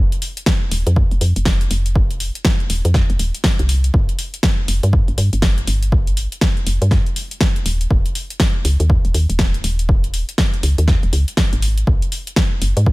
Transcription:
0.12 closed hi-hat
0.22 open hi-hat
0.37 closed hi-hat
0.46 kick, snare
0.71 D#1, open hi-hat
0.87 F2, closed hi-hat
0.96 kick
1.11 F1, closed hi-hat
1.21 F2, open hi-hat
1.36 F1, closed hi-hat
1.45 kick, snare
1.61 closed hi-hat
1.71 F1, open hi-hat
1.86 closed hi-hat
1.95 kick
2.11 closed hi-hat
2.20 open hi-hat
2.35 closed hi-hat
2.45 kick, snare
2.60 closed hi-hat
2.70 D#1, open hi-hat
2.85 F2, closed hi-hat
2.94 kick, snare
3.10 F1, closed hi-hat
3.19 D#1, open hi-hat
3.35 closed hi-hat
3.44 kick, snare
3.59 C2, closed hi-hat
3.69 open hi-hat
3.84 closed hi-hat
3.94 G1, kick
4.09 closed hi-hat
4.19 open hi-hat
4.34 closed hi-hat
4.43 kick, snare
4.68 F1, open hi-hat
4.83 G2, closed hi-hat
4.93 kick
5.08 G1, closed hi-hat
5.18 G2, open hi-hat
5.33 G1, closed hi-hat
5.42 kick, snare
5.58 closed hi-hat
5.67 G1, open hi-hat
5.83 closed hi-hat
5.92 kick
6.07 closed hi-hat
6.17 open hi-hat
6.32 closed hi-hat
6.41 kick, snare
6.57 closed hi-hat
6.67 F1, open hi-hat
6.82 G2, closed hi-hat
6.91 kick, snare
7.06 closed hi-hat
7.16 open hi-hat
7.31 closed hi-hat
7.41 kick, snare
7.56 closed hi-hat
7.66 D#1, open hi-hat
7.81 closed hi-hat
7.91 D#1, kick
8.06 closed hi-hat
8.15 open hi-hat
8.30 closed hi-hat
8.40 kick, snare
8.65 C#2, open hi-hat
8.80 D#2, closed hi-hat
8.90 kick
9.05 D#1, closed hi-hat
9.14 D#2, open hi-hat
9.30 D#1, closed hi-hat
9.39 kick, snare
9.54 closed hi-hat
9.64 D#1, open hi-hat
9.79 closed hi-hat
9.89 kick
10.04 closed hi-hat
10.14 open hi-hat
10.29 closed hi-hat
10.38 kick, snare
10.54 closed hi-hat
10.63 C#2, open hi-hat
10.78 D#2, closed hi-hat
10.88 kick, snare
11.03 D#1, closed hi-hat
11.13 C#2, open hi-hat
11.28 closed hi-hat
11.37 kick, snare
11.53 G#1, closed hi-hat
11.62 open hi-hat
11.78 closed hi-hat
11.87 G#1, kick
12.02 closed hi-hat
12.12 open hi-hat
12.27 closed hi-hat
12.36 kick, snare
12.62 F#1, open hi-hat
12.77 G#2, closed hi-hat
12.86 kick

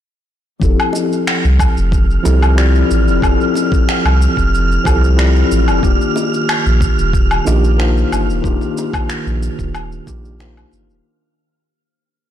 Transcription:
0.60 F1 F3 C4 E4 G4 F6, kick, shaker
0.64 A4
0.80 low woodblock, shaker
0.93 high bongo, shaker
1.12 shaker
1.27 finger snap, shaker
1.45 C2, shaker
1.59 kick, low woodblock, shaker
1.77 F1, shaker
1.92 kick, shaker
2.10 shaker
2.23 C2 F3 C4 E4 G4 A4, high bongo, shaker
2.42 low woodblock, shaker
2.56 F3 C4 E4 G4 D5, finger snap, shaker
2.75 shaker
2.91 A1, shaker
3.08 F1, shaker
3.20 F1 F3 C4 E4 G4, kick, low woodblock, shaker
3.24 A4
3.41 shaker
3.55 high bongo, shaker
3.72 kick, shaker
3.89 finger snap, shaker
4.05 C2, low woodblock, shaker
4.22 shaker
4.37 F1, kick, shaker
4.54 shaker
4.72 shaker
4.84 C2 F3 C4 E4 G4 A4, kick, low woodblock, shaker
5.04 shaker
5.16 F3 C4 E4 G4 D5, finger snap, shaker
5.36 shaker
5.52 A1, shaker
5.68 F1, low woodblock, shaker
5.81 D#1 D#3 A#3 D4 F4 G4, kick, shaker
6.01 shaker
6.16 high bongo, shaker
6.34 shaker
6.49 finger snap, low woodblock, shaker
6.66 A#1, shaker
6.81 kick, shaker
6.98 D#1, shaker
7.13 kick, shaker
7.31 low woodblock, shaker
7.45 A#1 D#3 A#3 D4 F4 G4, high bongo, shaker
7.64 shaker
7.77 D#3 A#3 D4 F4 C5, finger snap, shaker
7.97 shaker
8.12 G1, low woodblock, shaker
8.29 D#1, shaker
8.42 D#1 D#3 A#3 D4 F4 G4, kick, shaker
8.61 high bongo, shaker
8.78 high bongo, shaker
8.94 kick, low woodblock, shaker
9.10 finger snap, shaker
9.27 A#1, shaker
9.43 shaker
9.59 D#1, kick, shaker
9.75 low woodblock, shaker
9.92 shaker
10.07 A#1 D#3 A#3 D4 F4 G4, kick, shaker
10.25 shaker
10.39 D#3 A#3 D4 F4 C5, finger snap, shaker
10.57 low woodblock, shaker
10.73 G1, shaker
10.90 D#1, shaker

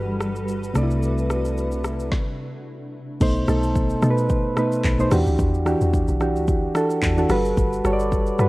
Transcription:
Already playing: G1 G3 F#4 A4 B4
0.21 cross-stick, shaker
0.36 shaker
0.48 shaker
0.63 shaker
0.74 C2 C3 A3 D4, cross-stick, shaker
0.78 D5
0.83 E4
0.91 shaker
1.03 shaker
1.18 shaker
1.30 cross-stick, shaker
1.45 shaker
1.58 shaker
1.72 shaker
1.84 cross-stick, shaker
2.00 shaker
2.12 kick, snare
3.20 B1 B2 A3 D#4 C5, kick, crash, shaker
3.36 shaker
3.47 B1 B2 A3 D#4 A4, cross-stick, shaker
3.63 shaker
3.76 kick, shaker
3.90 shaker
4.02 B2 A3 D#4 A4, cross-stick, shaker
4.11 B4
4.18 shaker
4.30 kick, shaker
4.56 B2 A3 D#4 B4, cross-stick, shaker
4.72 shaker
4.84 B1, kick, clap, shaker
4.99 B2 A3 D#4 C5, shaker
5.11 E2 E3 D4 F#4 G4, cross-stick, open hi-hat, shaker
5.27 D2, shaker
5.39 E2, kick, shaker
5.54 shaker
5.65 E3 D4 F#4 G4, cross-stick, shaker
5.81 E2, shaker
5.94 kick, shaker
6.08 B1, shaker
6.20 E3 D4 F#4 G4, cross-stick, shaker
6.36 D2, shaker
6.48 kick, shaker
6.75 E3 D4 F#4 A4, cross-stick, shaker
6.90 shaker
7.03 E2, kick, clap, shaker
7.17 E3 D4 F#4 A4, shaker
7.29 G1 G3 F#4 A4 B4, cross-stick, open hi-hat, shaker
7.45 shaker
7.57 G1, kick, shaker
7.73 shaker
7.84 G1 G3 F#4 A4 C#5, cross-stick, shaker
7.93 D5
7.99 shaker
8.12 kick, shaker
8.26 shaker
8.38 G2 G3 F#4 A4 B4, cross-stick, shaker

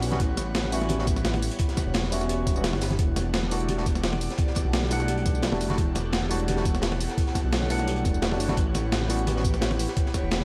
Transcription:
Already playing: G3 B4 C#5 F#5
0.02 B1, closed hi-hat, open hi-hat, tambourine
0.11 G3 B3 C#4 F#4, snare, closed hi-hat, high conga
0.20 A1 E4, kick, closed hi-hat
0.37 snare, closed hi-hat, tambourine, muted conga
0.55 snare, closed hi-hat
0.64 muted conga
0.72 G3 B3 C#4 F#4 E5, closed hi-hat, open hi-hat, tambourine
0.82 snare, closed hi-hat
0.89 G4, closed hi-hat, high conga
0.98 G3 B3 C#4 F#4, snare
1.07 B3, kick, closed hi-hat, tambourine
1.16 snare, tambourine
1.25 E4, snare, closed hi-hat
1.33 snare, closed hi-hat, high conga
1.42 open hi-hat, tambourine
1.51 closed hi-hat
1.59 E4, kick, closed hi-hat
1.68 snare, closed hi-hat
1.77 kick, snare, closed hi-hat, tambourine, muted conga, high conga
1.86 E1
1.94 snare, closed hi-hat
2.03 snare, muted conga
2.10 G3 B3 C#4 F#4 E5, closed hi-hat, open hi-hat, tambourine
2.21 snare, closed hi-hat, tambourine
2.29 G4, closed hi-hat
2.47 B3, kick, closed hi-hat, tambourine
2.55 G3 B3 C#4 F#4, tambourine
2.64 E4, snare, closed hi-hat
2.73 G1, snare, muted conga
2.81 snare, closed hi-hat, open hi-hat, tambourine
2.91 snare, closed hi-hat, high conga
2.99 E1 E4 G4 A4 D5 F#5, kick, closed hi-hat
3.16 snare, closed hi-hat, tambourine, muted conga
3.34 snare, closed hi-hat
3.43 muted conga
3.50 G3 A3 D4 E4 F#4, closed hi-hat, open hi-hat, tambourine
3.60 closed hi-hat
3.68 G4, closed hi-hat, high conga
3.77 G3 A3 D4 F#4, snare
3.86 B3, kick, closed hi-hat, tambourine
3.95 snare, tambourine
4.04 E4, snare, closed hi-hat
4.13 snare, closed hi-hat, high conga
4.21 closed hi-hat, open hi-hat, tambourine
4.30 snare, closed hi-hat
4.38 E4, kick, closed hi-hat
4.47 snare
4.55 kick, snare, closed hi-hat, tambourine, muted conga, high conga
4.65 B1
4.73 snare, closed hi-hat
4.83 snare, muted conga
4.89 G3 A3 D4 E4 F#5, closed hi-hat, open hi-hat, tambourine
5.00 snare, closed hi-hat, tambourine
5.08 G4, closed hi-hat
5.18 closed hi-hat
5.26 B3, kick, closed hi-hat, tambourine
5.35 tambourine
5.42 E4, snare, closed hi-hat
5.51 E1 G3 A3 D4 F#4, snare, muted conga
5.60 F#1, closed hi-hat, open hi-hat, tambourine
5.69 G3 A3 D4 F#4, snare, closed hi-hat, high conga
5.78 E1 E4 C#5, kick, closed hi-hat
5.95 snare, closed hi-hat, tambourine, muted conga
6.13 snare, closed hi-hat
6.22 muted conga
6.29 G3 A3 D4 E4 F#4, closed hi-hat, open hi-hat, tambourine
6.40 closed hi-hat
6.48 G4, closed hi-hat, high conga
6.56 G3 A3 D4 F#4, snare
6.65 B3, kick, closed hi-hat, tambourine
6.75 snare, tambourine
6.82 E4, snare, closed hi-hat
6.91 snare, closed hi-hat, high conga
7.00 closed hi-hat, open hi-hat, tambourine
7.09 snare, closed hi-hat
7.18 E4, kick, closed hi-hat
7.26 snare
7.35 kick, snare, closed hi-hat, tambourine, muted conga, high conga
7.44 B1
7.52 snare, closed hi-hat
7.61 snare, muted conga
7.68 G3 A3 D4 E4 F#5, closed hi-hat, open hi-hat, tambourine
7.79 snare, closed hi-hat, tambourine
7.88 G4, closed hi-hat
7.96 closed hi-hat
8.05 E1 E4, kick, closed hi-hat, tambourine, high conga
8.14 tambourine
8.22 E3, snare, closed hi-hat
8.31 G3 A3 D4 F#4, snare, muted conga
8.40 G1, closed hi-hat, open hi-hat, tambourine
8.48 G3 A3 D4 F#4, snare, closed hi-hat, high conga
8.57 A1 E4 G4 B4, kick, closed hi-hat
8.74 snare, closed hi-hat, tambourine, muted conga
8.92 snare, closed hi-hat
9.01 muted conga
9.08 G3 B3 C#4 E4 F#4, closed hi-hat, open hi-hat, tambourine
9.19 closed hi-hat
9.27 G4, closed hi-hat, high conga
9.35 G3 B3 C#4 F#4, snare
9.44 B3, kick, closed hi-hat, tambourine
9.54 snare, tambourine
9.61 E4, snare, closed hi-hat
9.71 snare, closed hi-hat, high conga
9.79 closed hi-hat, open hi-hat, tambourine
9.88 snare, closed hi-hat
9.97 E4, kick, closed hi-hat
10.06 snare
10.14 kick, snare, closed hi-hat, tambourine, muted conga, high conga
10.23 E1
10.31 snare, closed hi-hat
10.40 muted conga

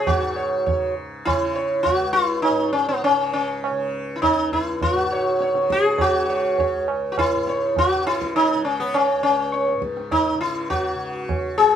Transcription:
Already playing: C#2 C#3
0.07 G#2 F#4, tabla tin, tabla ge
0.36 C#5
0.66 C#3 C#5, tabla tin, tabla ge
1.25 C#3 E4, tabla na, tabla ge
1.56 C#5, tabla te
1.83 F#4, tabla tin, tabla ge
1.89 C#2
2.13 E4
2.42 D#4, tabla na
2.50 G#2
2.73 C#4
2.89 B3
3.04 C#4, tabla na
3.11 C#3
3.33 C#4
3.64 tabla na
3.71 C#3
4.16 E4
4.22 D#4, tabla na, tabla ge
4.32 C#2
4.52 E4, tabla ge
4.82 F4, tabla tin, tabla ge
4.92 G#2
4.97 F#4
5.12 C#5
5.40 C#5, tabla te
5.53 C#3, tabla te
5.70 G#4, tabla ke
5.84 tabla te
5.98 F#4, tabla tin, tabla ge
6.13 C#3
6.30 C#5
6.58 C#5, tabla tin, tabla ge
6.74 C#2
6.88 tabla na
7.12 F#4
7.18 E4, tabla na, tabla ge
7.35 G#2
7.47 C#5, tabla te
7.76 F#4, tabla tin, tabla ge
7.94 C#3
8.06 E4, tabla na
8.22 tabla ke
8.36 D#4, tabla na
8.54 C#3
8.65 C#4
8.80 B3
8.94 C#4, tabla na
9.15 C#2
9.23 C#4
9.54 C#5, tabla te
9.68 tabla te
9.75 G#2
9.82 tabla ke
9.97 tabla te
10.11 D#4, tabla na, tabla ge
10.35 C#3
10.41 E4
10.70 F#4, tabla tin, tabla ge
10.95 C#3
11.29 tabla na, tabla ge
11.55 C#2 G#4
11.59 tabla te

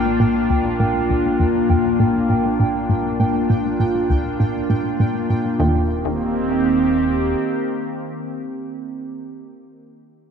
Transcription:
Already playing: A#1 A#2 A#3 D4 F4 G5
0.20 A#2
0.50 D2
0.80 A#2
1.10 D2
1.40 F2
1.70 F2
2.00 A#2
2.30 A#2
2.60 A#2
2.89 A2
3.20 A#2
3.50 A#2
3.80 A#2
4.10 D2
4.40 A#2
4.70 A#2
5.00 A#2
5.30 A#2
5.60 D#1 D#2 D#3
5.69 A#3
5.78 C4
5.87 G4

